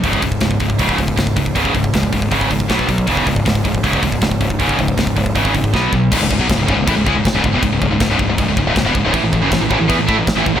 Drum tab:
CC |----------------|----------------|----------------|----------------|
HH |o-o-o-o-o-o-o-o-|o-o-o-o-o-o-o-o-|o-o-o-o-o-o-o-o-|o-o-o-o-o-o-----|
SD |----o-------o---|----o-------o---|----o-------o---|----o-------o---|
BD |oooooooooooooooo|oooooooooooooooo|oooooooooooooooo|ooooooooooooo-o-|

CC |x---x---x---x---|x---x---x---x---|x---x---x---x---|
HH |----------------|----------------|----------------|
SD |----o-------o---|----o-------o---|----o-------o---|
BD |o-o-o-o-o-o-o-o-|o-o-o-o-o-o-o-o-|o-o-o-o-o-o-o-o-|